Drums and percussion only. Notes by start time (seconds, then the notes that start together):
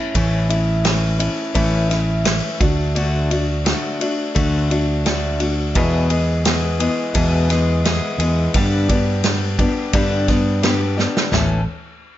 0.15 kick, ride
0.50 ride
0.85 snare, ride
1.20 ride
1.55 kick, ride
1.91 snare, ride
2.25 snare, ride
2.61 kick, ride
2.96 ride
3.31 ride
3.66 snare, ride
4.01 ride
4.36 kick, ride
4.71 ride
5.06 snare, ride
5.40 ride
5.75 kick, ride
6.10 ride
6.45 snare, ride
6.80 ride
7.15 kick, ride
7.50 snare, ride
7.85 snare, ride
8.20 ride
8.54 kick, ride
8.89 kick, ride
9.24 snare, ride
9.59 kick, ride
9.93 kick, ride
10.28 kick, snare, ride
10.63 snare, ride
10.99 snare
11.17 snare
11.33 snare, floor tom